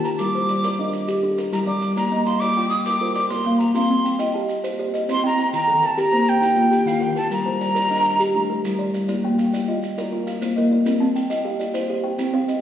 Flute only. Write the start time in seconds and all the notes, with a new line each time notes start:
0.03 A#5
0.18 D6
1.53 A#5
1.67 D6
1.96 A#5
2.26 C6
2.40 D6
2.69 D#6
2.84 D6
3.15 D6
3.29 C6
3.59 A#5
3.74 C6
5.11 C6
5.26 A#5
5.54 A#5
5.85 A5
5.99 A#5
6.29 G5
6.87 F5
7.02 G5
7.17 A5
7.32 A#5